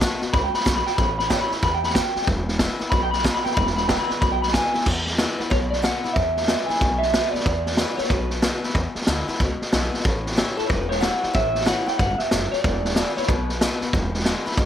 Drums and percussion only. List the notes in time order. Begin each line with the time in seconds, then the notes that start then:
0.01 kick, snare, hi-hat pedal
0.22 snare
0.33 kick, snare
0.54 snare
0.61 snare
0.66 kick, snare, hi-hat pedal
0.87 snare
0.98 kick, snare
1.19 snare
1.30 kick, snare, hi-hat pedal
1.52 snare
1.62 kick, snare
1.84 snare
1.90 snare
1.95 kick, snare, hi-hat pedal
2.16 snare
2.22 snare
2.27 kick, snare
2.48 snare
2.59 kick, snare, hi-hat pedal
2.80 snare
2.91 kick, snare
3.13 snare
3.19 snare
3.25 kick, snare, hi-hat pedal
3.46 snare
3.51 snare
3.57 kick, snare
3.67 snare
3.77 snare
3.89 kick, snare, hi-hat pedal
4.10 snare
4.21 kick, snare
4.43 snare
4.48 snare
4.54 kick, snare, hi-hat pedal
4.74 snare
4.81 snare
4.86 kick, snare, crash
5.07 snare
5.13 snare
5.18 snare, hi-hat pedal
5.40 snare
5.51 kick, snare
5.73 snare
5.84 snare, hi-hat pedal
6.04 snare
6.16 kick, snare
6.37 snare
6.43 snare
6.48 snare, hi-hat pedal
6.70 snare
6.75 snare
6.81 kick, snare
7.03 snare
7.14 snare, hi-hat pedal
7.35 snare
7.40 snare
7.46 kick, snare
7.66 snare
7.72 snare
7.77 snare, hi-hat pedal
7.98 snare
8.04 snare
8.09 kick, snare
8.30 snare
8.42 snare, hi-hat pedal
8.63 snare
8.70 snare
8.75 kick, snare
8.95 snare
9.01 snare
9.07 snare, hi-hat pedal
9.28 snare
9.35 snare
9.40 kick, snare
9.62 snare
9.73 snare, hi-hat pedal
9.94 snare
10.00 snare
10.05 kick, snare
10.26 snare
10.32 snare
10.38 snare, hi-hat pedal
10.58 snare
10.70 kick, snare
10.91 snare
11.02 snare, hi-hat pedal
11.23 snare
11.34 kick, snare
11.55 snare
11.61 snare
11.66 snare, hi-hat pedal
11.87 snare
11.99 kick, snare
12.19 snare
12.31 snare, hi-hat pedal
12.53 snare
12.64 kick, snare
12.85 snare
12.90 snare
12.96 snare, hi-hat pedal
13.17 snare
13.23 snare
13.28 kick, snare
13.49 snare
13.61 snare, hi-hat pedal
13.81 snare
13.93 kick, snare
14.14 snare
14.20 snare
14.25 snare, hi-hat pedal
14.46 snare
14.51 snare
14.57 kick, snare